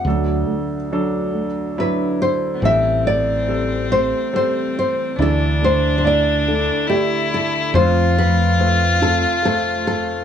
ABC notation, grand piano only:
X:1
M:3/4
L:1/8
Q:1/4=70
K:Am
V:1 name="Grand piano"
[^F,DA]2 [F,DA] z [F,DE]2 | [G,CA]2 [G,CA] z [G,CA]2 | [A,Ed]2 [A,Ed] z [A,Ed]2 | [A,Fc]2 [A,CF] z [A,Fc]2 |]
V:2 name="Grand piano" clef=bass
[D,,D,]6 | [A,,,A,,]6 | [D,,D,]6 | [F,,,F,,]6 |]